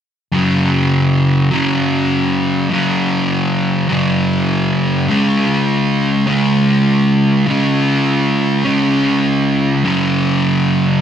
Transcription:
distorted electric guitar
0.32 F#2 C#3 F#3
1.51 F#2 C#3 F#3
2.70 F#2 C#3 F#3
3.89 F#2 C#3 F#3
5.08 C#3 G#3 C#4
6.27 C#3 G#3 C#4
7.46 C#3 G#3 C#4
8.65 C#3 G#3 C#4
9.84 F#2 C#3 F#3

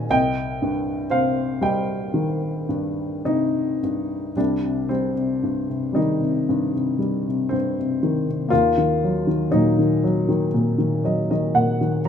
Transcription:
grand piano
Already playing: A#2 D#3 F#3 D#5 F#5 G#5
0.10 C2 D#5 G5
0.62 G2
1.10 C3 C5 F5
1.61 G3 D#5 G5
2.14 D#3
2.69 G2
3.25 C3 D#4
3.83 G2
4.36 C2 G3 D4
4.63 C3
4.89 G3 C4
5.16 C3
5.43 G2
5.69 C3
5.93 D#3 G3 D#4
6.21 C3
6.49 G2
6.74 C3
6.99 G3
7.28 C3
7.49 G2 C4
7.79 C3
8.03 D#3
8.28 C3
8.48 A#3 F4
8.53 D#2
8.78 D#3
9.04 F#3
9.27 D#3
9.50 A#2 F#3 D#4
9.79 D#3
10.04 F#3
10.29 D#3
10.54 A#2
10.78 D#3
11.04 F#3 D#5
11.31 D#3 D#5
11.55 A#2 F#5
11.81 D#3
12.05 F#3 A#5

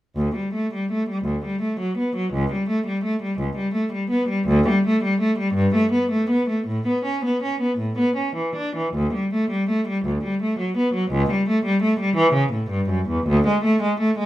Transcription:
cello
0.16 D2
0.35 G3
0.53 A3
0.74 G3
0.91 A3
1.09 G3
1.25 D2
1.45 G3
1.61 A3
1.80 F#3
1.98 B3
2.16 F#3
2.33 C#2
2.52 G3
2.69 A3
2.87 G3
3.04 A3
3.22 G3
3.39 C#2
3.56 G3
3.74 A3
3.92 G3
4.10 B3
4.28 G3
4.48 D2
4.68 G3
4.87 A3
5.04 G3
5.20 A3
5.38 G3
5.54 G2
5.75 A3
5.92 B3
6.11 A3
6.30 B3
6.49 A3
6.67 A2
6.87 B3
7.05 C#4
7.25 B3
7.43 C#4
7.61 B3
7.78 A2
7.98 B3
8.16 C#4
8.36 E3
8.56 D4
8.76 E3
8.94 D2
9.14 G3
9.34 A3
9.50 G3
9.69 A3
9.88 G3
10.05 D2
10.24 G3
10.42 A3
10.59 F#3
10.77 B3
10.94 F#3
11.11 C#2
11.31 G3
11.49 A3
11.65 G3
11.82 A3
12.00 G3
12.16 E3
12.33 C#3
12.53 A2
12.70 G2
12.90 F#2
13.09 E2
13.27 D2
13.47 G#3
13.64 A3
13.82 G#3
14.00 A3
14.18 G#3

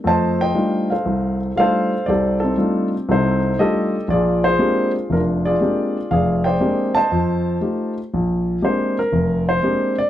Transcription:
grand piano
0.04 F2 A3 C5 D#5 A5
0.41 C5 D#5 G5
0.54 G3 A3 D4 D#4 F4
0.90 A4 C5 F5
1.05 C2
1.56 G3 A3 D4 D#4 F4 A4 F5
1.60 C5
2.06 C2 G4 A4 D5
2.40 C4 D#4 A4
2.57 G3 A3 D4 D#4 F4
3.09 C2 C3 D#4 A4 C5
3.59 G3 A3 D4 D#4 F4 G4 A4 D#5
4.08 A#1 F4 G#4 D5
4.44 F4 G#4 C5
4.59 G#3 A#3 C4 D4 G4
5.10 F1 D4 F4 A#4
5.45 F4 G#4 D5
5.61 G#3 A#3 C4 D4 G4
6.11 F1 G#4 D5 F5
6.44 C5 D5 G5
6.60 G#3 A#3 C4 D4 G4
6.95 C5 D#5 A5
7.11 F2
7.61 A3 D#4 F4 G4
8.14 A#1
8.62 G#3 A#3 C4 D4 G4 C5
8.99 A#4
9.12 F1
9.49 C5
9.62 G#3 A#3 C4 D4 G4
9.98 D5

